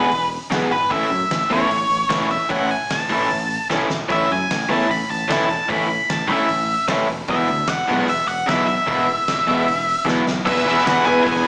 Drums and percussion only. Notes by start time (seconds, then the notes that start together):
0.12 open hi-hat
0.32 open hi-hat
0.52 snare, open hi-hat
0.72 open hi-hat
0.91 kick, open hi-hat
1.11 open hi-hat
1.31 snare, open hi-hat
1.51 open hi-hat
1.71 open hi-hat
1.90 open hi-hat
2.10 snare, open hi-hat
2.31 open hi-hat
2.50 kick, open hi-hat
2.70 open hi-hat
2.90 snare, open hi-hat
3.10 open hi-hat
3.31 open hi-hat
3.50 open hi-hat
3.70 snare
3.90 snare
4.10 kick, open hi-hat
4.31 open hi-hat
4.51 snare, open hi-hat
4.71 open hi-hat
4.91 open hi-hat
5.11 open hi-hat
5.30 snare, open hi-hat
5.50 open hi-hat
5.70 kick, open hi-hat
5.90 open hi-hat
6.10 snare, open hi-hat
6.30 open hi-hat
6.49 open hi-hat
6.69 open hi-hat
6.88 snare, open hi-hat
7.08 open hi-hat
7.28 kick, open hi-hat
7.48 open hi-hat
7.67 snare, open hi-hat
7.88 open hi-hat
8.08 open hi-hat
8.28 open hi-hat
8.49 snare, open hi-hat
8.69 open hi-hat
8.88 kick, open hi-hat
9.08 open hi-hat
9.28 snare, open hi-hat
9.48 open hi-hat
9.68 open hi-hat
9.89 open hi-hat
10.08 snare
10.27 snare
10.47 kick, crash
10.77 snare
10.87 snare, open hi-hat
11.27 kick, open hi-hat